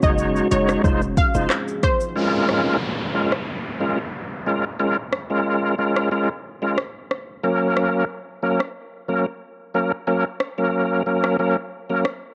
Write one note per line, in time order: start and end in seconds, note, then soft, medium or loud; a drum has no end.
0.00 0.41 F#1 loud
0.00 0.83 G#3 medium
0.00 0.47 G#3 medium
0.00 0.82 C#4 medium
0.00 0.48 D#4 medium
0.00 0.82 F#4 medium
0.00 0.48 F#4 medium
0.00 0.48 C#5 medium
0.00 0.17 D#5 medium
0.00 kick loud
0.00 shaker medium
0.18 shaker medium
0.36 shaker medium
0.51 0.77 F#1 loud
0.51 0.82 G#3 medium
0.51 0.82 D#4 medium
0.51 0.82 F#4 medium
0.51 0.82 C#5 medium
0.51 0.67 C#5 medium
0.51 closed hi-hat medium
0.51 shaker medium
0.69 cross-stick loud
0.69 shaker medium
0.84 1.23 F1 loud
0.84 2.15 F3 medium
0.84 1.02 G#3 medium
0.84 2.15 C4 medium
0.84 1.02 D#4 medium
0.84 2.15 D#4 medium
0.84 1.02 F4 medium
0.84 2.15 G#4 medium
0.84 1.02 C5 loud
0.84 kick loud
0.84 shaker medium
1.02 shaker medium
1.17 1.33 F5 medium
1.17 kick loud
1.17 closed hi-hat medium
1.17 shaker medium
1.34 1.47 F1 medium
1.34 1.50 G#3 medium
1.34 1.50 D#4 medium
1.34 1.50 F4 medium
1.34 1.50 C5 medium
1.34 shaker medium
1.50 cross-stick loud
1.50 clap loud
1.50 shaker medium
1.68 shaker medium
1.83 1.99 C5 medium
1.83 kick medium
1.83 cross-stick loud
1.83 closed hi-hat medium
1.83 shaker soft
2.00 shaker medium
2.16 2.77 G#3 medium
2.16 2.77 C#4 medium
2.16 2.77 F4 medium
2.16 2.77 A#4 loud
2.16 downlifter medium
2.49 cross-stick loud
3.15 3.32 G#3 medium
3.15 3.32 C#4 medium
3.15 3.33 F4 medium
3.15 3.33 A#4 medium
3.32 cross-stick medium
3.80 3.98 G#3 medium
3.80 3.98 C#4 medium
3.80 3.98 F4 medium
3.80 3.99 A#4 medium
4.46 4.64 G#3 medium
4.46 4.64 C#4 medium
4.46 4.64 F4 medium
4.46 4.65 A#4 medium
4.79 4.97 G#3 medium
4.79 4.97 C#4 medium
4.79 4.97 F4 medium
4.79 4.97 A#4 medium
5.13 cross-stick loud
5.30 5.75 G#3 medium
5.30 5.75 C#4 medium
5.30 5.75 F4 medium
5.30 5.75 A#4 medium
5.78 6.09 G#3 medium
5.78 6.09 C#4 medium
5.78 6.09 F4 medium
5.78 6.09 A#4 medium
5.96 cross-stick loud
6.11 6.29 G#3 medium
6.11 6.29 C#4 medium
6.11 6.29 F4 medium
6.11 6.29 A#4 loud
6.62 6.78 G#3 medium
6.62 6.78 C#4 medium
6.62 6.78 F4 medium
6.62 6.78 A#4 medium
6.78 cross-stick loud
7.11 cross-stick medium
7.43 8.05 F#3 medium
7.43 8.05 A#3 medium
7.43 8.05 C#4 medium
7.43 8.05 A#4 medium
7.77 cross-stick loud
8.43 8.60 F#3 medium
8.43 8.60 A#3 medium
8.43 8.60 C#4 medium
8.43 8.60 A#4 medium
8.60 cross-stick medium
9.09 9.26 F#3 medium
9.09 9.26 A#3 medium
9.09 9.26 C#4 medium
9.09 9.26 A#4 medium
9.74 9.92 F#3 medium
9.74 9.92 A#3 medium
9.74 9.92 C#4 medium
9.74 9.92 A#4 medium
10.07 10.25 F#3 medium
10.07 10.25 A#3 medium
10.07 10.25 C#4 medium
10.07 10.25 A#4 loud
10.40 cross-stick loud
10.58 11.03 F#3 medium
10.58 11.03 A#3 medium
10.58 11.03 C#4 medium
10.58 11.03 A#4 medium
11.06 11.37 F#3 medium
11.06 11.37 A#3 medium
11.06 11.37 C#4 medium
11.06 11.37 A#4 medium
11.24 cross-stick loud
11.39 11.57 F#3 medium
11.39 11.57 A#3 medium
11.39 11.57 C#4 medium
11.39 11.57 A#4 loud
11.90 12.05 F#3 medium
11.90 12.05 A#3 medium
11.90 12.05 C#4 medium
11.90 12.05 A#4 medium
12.05 cross-stick loud